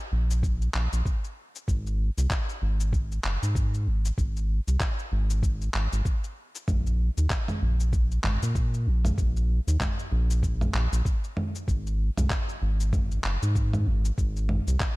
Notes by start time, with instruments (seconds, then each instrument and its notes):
0.12 analog synth bass A#1
0.31 cabasa
0.43 kick, cabasa
0.62 cabasa
0.74 analog synth bass A#1, clap
0.93 analog synth bass A#1, cabasa
1.05 kick, cabasa
1.24 cabasa
1.56 cabasa
1.68 analog synth bass G#1, kick, cabasa
1.87 cabasa
2.17 analog synth bass C2, cabasa
2.30 kick, clap, cabasa
2.49 cabasa
2.62 analog synth bass G#1
2.80 cabasa
2.93 kick, cabasa
3.12 cabasa
3.24 analog synth bass F#1, clap
3.42 analog synth bass G#2, cabasa
3.55 kick, cabasa
3.74 cabasa
3.87 analog synth bass G#1
4.05 cabasa
4.18 analog synth bass G#1, kick, cabasa
4.37 cabasa
4.67 analog synth bass C2, cabasa
4.80 kick, clap, cabasa
4.99 cabasa
5.12 analog synth bass G#1
5.30 cabasa
5.43 kick, cabasa
5.62 cabasa
5.74 analog synth bass G#1, clap
5.92 analog synth bass G#1, cabasa
6.05 kick, cabasa
6.24 cabasa
6.55 cabasa
6.68 analog synth bass A#1, kick, mid tom, cabasa
6.87 cabasa
7.17 analog synth bass D#2, cabasa
7.30 kick, clap, cabasa
7.48 mid tom, cabasa
7.62 analog synth bass A#1
7.80 cabasa
7.93 kick, cabasa
8.12 cabasa
8.24 analog synth bass G#1, clap, mid tom
8.42 analog synth bass A#2, cabasa
8.55 kick, cabasa
8.74 cabasa
8.87 analog synth bass A#1
9.05 mid tom, cabasa
9.18 analog synth bass A#1, kick, cabasa
9.37 cabasa
9.67 analog synth bass D#2, cabasa
9.80 kick, clap, mid tom, cabasa
9.99 cabasa
10.12 analog synth bass A#1
10.30 cabasa
10.43 kick, cabasa
10.61 mid tom, cabasa
10.74 analog synth bass A#1, clap
10.92 analog synth bass A#1, cabasa
11.05 kick, cabasa
11.24 cabasa
11.37 mid tom
11.55 cabasa
11.68 analog synth bass G#1, kick, cabasa
11.87 cabasa
12.17 analog synth bass C2, mid tom, cabasa
12.30 kick, clap, cabasa
12.49 cabasa
12.62 analog synth bass G#1
12.80 cabasa
12.93 kick, mid tom, cabasa
13.11 cabasa
13.24 analog synth bass F#1, clap
13.42 analog synth bass G#2, cabasa
13.55 kick, cabasa
13.73 mid tom, cabasa
13.87 analog synth bass G#1
14.05 cabasa
14.18 analog synth bass G#1, kick, cabasa
14.37 cabasa
14.49 mid tom
14.67 analog synth bass C2, cabasa
14.80 kick, clap, cabasa